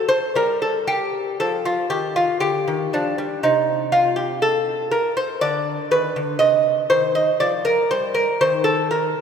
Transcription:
0.08 C5
0.35 G3 A#4
0.62 A4
0.87 G4
1.40 F3 A4
1.65 F4
1.90 D#3 G4
2.16 F4
2.40 D3 G4
2.68 D#3
2.93 F3 D4
3.18 G3
3.43 C3 D#4
3.92 F4
4.16 G4
4.42 A4
4.91 A#4
5.17 C5
5.41 D3 D5
5.91 D#3 B4
6.16 D3
6.39 C3 D#5
6.90 D#3 C5
7.15 D#5
7.40 F3 D5
7.65 A#4
7.91 G3 C5
8.14 A#4
8.41 D#3 C5
8.64 A4
8.91 A#4

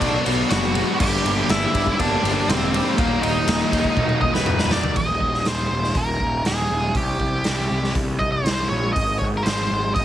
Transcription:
Already playing: D4 D5
0.00 B1 F#3 B3 D4 F#4, kick, ride
0.25 B1 B2 F#3 B3 D4 F#4, ride
0.49 F#1 F#3 B3 D4 F#4 F#5, snare, ride
0.74 B3 D4 F#4, ride
0.99 G1 G2 D3 G3 A#3 D4 G4 G5, kick, crash
1.24 G1 G3 A#3 D4 G4, ride
1.49 G1 G2 D3 G3 A#3 D4 E4 G4 E5, snare, ride
1.74 G1 G3 A#3 D4 G4, kick, ride
1.87 kick
1.99 G1 G3 A#3 D4 G4 D5, kick, ride
2.23 G1 G2 D3 G3 A#3 D4 G4, ride
2.48 E1 G3 A#3 C4 D4 G4 C5, snare, ride
2.72 G3 A#3 D4 G4, ride
2.96 D#1 D#2 A#2 D#3 F#3 A#3 D#4 A#4, kick, ride
3.22 D#1 D#3 F#3 A#3 D#4 D#5, ride
3.47 D#1 D#2 A#2 D#3 F#3 A#3 D#4, snare, ride
3.71 D#1 D#3 F#3 A#3 D#4, kick, ride
3.84 kick
3.95 D#1 D#3 F#3 A#3 D#4, kick, high tom
4.09 high tom
4.21 D#1 D#2 A#2 D#3 F#3 A#3 D#4 D#5, kick
4.34 B4, snare
4.45 D#1 D#3 F#3 A#3 D#4, mid tom
4.59 snare
4.70 D#3 F#3 A#3 D#4 D5, snare
4.83 floor tom
4.96 D#1 D#5, kick, crash
5.20 D#1, kick
5.34 snare
5.45 D#1 C5, snare, open hi-hat
5.71 D#1
5.84 snare
5.95 D#1 A#4, kick, open hi-hat
6.20 D#1, kick
6.44 D#1 G#4, snare, open hi-hat
6.70 D#1
6.95 C2 G4, kick, open hi-hat
7.20 C2, kick
7.44 C2, snare, open hi-hat
7.71 C2
7.84 snare
7.95 C2, kick, open hi-hat
8.19 C2 D#5, kick
8.32 C5
8.44 C2, snare, open hi-hat
8.69 A#1 C#5
8.93 G#1 D#5, kick, open hi-hat
9.19 G#1 C#5, kick
9.37 A#4
9.43 G#1 C5, snare, open hi-hat
9.71 G#1
9.94 G#1 D#5, kick, open hi-hat

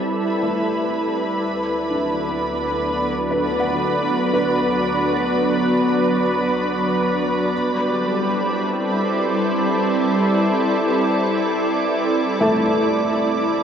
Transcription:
Already playing: G3 C4 E4 A4 B4 D5 B5
0.43 A3
1.41 D2
1.62 B4
1.67 F#3
1.82 D4
1.90 B3 D4
3.31 B4
3.60 F#5
4.34 B4
7.50 G3
7.63 A4
7.86 C4
8.06 E4
12.41 A3

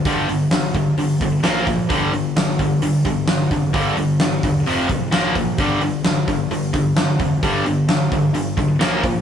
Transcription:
0.05 G1 G2 D3 G3, kick, open hi-hat
0.29 G1 G2 D3, open hi-hat
0.51 G1 G2 D3, snare, open hi-hat
0.74 G1 G2 D3, kick, open hi-hat
0.97 G1 G2 D3, open hi-hat
1.21 G1 G2 D3, kick, open hi-hat
1.43 A#1 A#2 F3 A#3, snare, open hi-hat
1.67 A#2 F3, kick, open hi-hat
1.89 G1 G2 D3 G3, kick, open hi-hat
2.13 G2 D3, open hi-hat
2.37 G1 G2 D3, snare, open hi-hat
2.59 G2 D3, kick, open hi-hat
2.82 G1 G2 D3, open hi-hat
3.05 G2 D3, kick, open hi-hat
3.28 G1 G2 D3, snare, open hi-hat
3.51 F1 G2 D3, kick, open hi-hat
3.73 G1 G2 D3 G3, kick, open hi-hat
3.97 G1 G2 D3, open hi-hat
4.20 G1 G2 D3, snare, open hi-hat
4.43 E1 G2 D3, kick, open hi-hat
4.66 F1 F2 C3 F3, open hi-hat
4.89 B1 F2 C3, kick, open hi-hat
5.11 A#1 A#2 F3 A#3, snare, open hi-hat
5.35 A#2 F3, kick, open hi-hat
5.58 G1 G2 D3 G3, kick, open hi-hat
5.81 G2 D3, open hi-hat
6.05 G1 G2 D3, snare, open hi-hat
6.28 G2 D3, kick, open hi-hat
6.51 G1 G2 D3, open hi-hat
6.73 G2 D3, kick, open hi-hat
6.97 G1 G2 D3, snare, open hi-hat
7.19 F1 G2 D3, kick, open hi-hat
7.43 G1 G2 D3 G3, kick, open hi-hat
7.66 G1 G2 D3, open hi-hat
7.88 G1 G2 D3, snare, open hi-hat
8.12 G1 G2 D3, kick, open hi-hat
8.34 G1 G2 D3, open hi-hat
8.57 B1 G2 D3, kick, open hi-hat
8.79 A#1 A#2 F3 A#3, snare, open hi-hat
9.03 A#2 F3, kick, open hi-hat

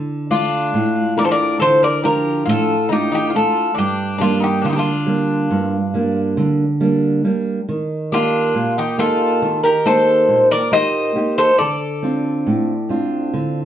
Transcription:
Already playing: D3
0.30 A3 D4 F4
0.74 A2
1.17 A3 D4 F4 A#4 D5
1.24 A4 C5
1.31 A#4 D5
1.60 D3 A4 C5
1.83 A#4 D5
2.04 F3 D4 F4 G4 A#4
2.46 A2 F4 A4
2.89 A3 D4 D#4 F4 G4
3.12 D#4 G4
3.30 F4
3.34 A3 D4 F4 A4
3.75 G2 D4 G4
4.18 G3 A#3 D4 F4
4.40 D#4 G4
4.62 D3 D4 F4
4.69 D#4 G4
4.76 D4 F4
5.06 G3 A#3 D4
5.51 G2
5.94 G3 A#3 D4
6.37 D3
6.80 G3 A#3 D4
7.24 G3 A#3 D4
7.69 D#3
8.12 A#3 D4 F4 G4
8.55 A#2
8.78 D#4 G4
8.98 A#3 D#4 F4 G4 A4
9.42 D#3
9.64 G4 A#4
9.85 A#3 D#4 G4 A4 C5
10.29 A#2
10.51 A#4 D5
10.72 A#3 D#4 G4 C5 D#5
11.15 A#3 D#4 G4
11.38 A4 C5
11.58 D3 A4 D5
12.03 C4 D4 F4
12.47 A2
12.89 C4 D4 F4
13.33 D3

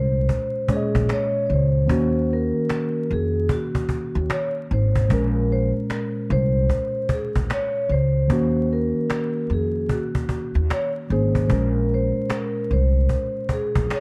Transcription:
Already playing: C2 A#2 G#3 C#4 C5
0.14 cajon slap
0.29 cajon bass
0.68 A#2 G#3 C#4 C#5, cajon bass
0.72 G#4
0.77 D#5
0.95 A#1, cajon bass
1.09 C#5, cajon slap
1.46 C#2 C#5
1.53 C5
1.86 D#2 D#3 A#3 C#4, cajon bass
1.92 F#4
2.31 A#4, cajon slap
2.69 cajon slap
3.10 F2 G#4, cajon slap
3.33 cajon slap
3.49 F#4, cajon bass
3.75 cajon bass
3.89 cajon bass
4.15 D#2
4.30 C#5, cajon slap
4.71 G#1 C5
4.95 cajon bass
5.08 A#1 A#2 G#3 C#4, cajon bass
5.13 A#4
5.51 C5, cajon slap
5.90 A#4, cajon slap
6.30 C2 C5, cajon slap
6.54 cajon slap
6.69 cajon bass
7.09 cajon bass
7.13 G#4
7.35 A#1, cajon bass
7.50 C#5, cajon slap
7.89 C#2 C5
8.28 D#2 D#3 A#3 C#4, cajon bass
8.33 F#4
8.71 A#4, cajon slap
8.97 cajon slap
9.10 cajon slap
9.50 F2 G#4, cajon slap
9.74 cajon slap
9.89 F#4, cajon bass
10.15 cajon bass
10.29 cajon bass
10.54 D#2, cajon slap
10.70 C#5, cajon slap
11.09 G#1 D#3 A#3 C#4 G#4 C5, cajon slap
11.35 cajon bass
11.47 A#1 A#2 G#3 C5, cajon bass
11.52 C#4 A#4
11.91 C5, cajon slap
12.30 A#4, cajon slap
12.71 C2 C5, cajon slap
12.94 cajon slap
13.09 cajon bass
13.49 cajon bass
13.53 G#4
13.75 A#1, cajon bass
13.90 C#5, cajon slap

